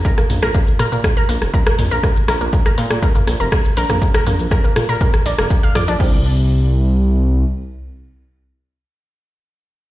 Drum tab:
CC |----------------|----------------|----------------|x---------------|
HH |--o---o---o---o-|--o---o---o---o-|--o---o---o---o-|----------------|
SH |xx-xxx-xxx-xxxxx|xx-xxx-xxx-xxxxx|xxxxxxxxxxxxxxxx|----------------|
SD |-r-r--r-r--r-r--|r-r--r-r--r-r--r|-r--r-r--r-r--r-|----------------|
T2 |--o-----------o-|---------o-----o|--o-----------o-|----------------|
BD |o---o---o---o---|o---o---o---o---|o---o---o---o---|o---------------|

CC |----------------|
HH |----------------|
SH |----------------|
SD |----------------|
T2 |----------------|
BD |----------------|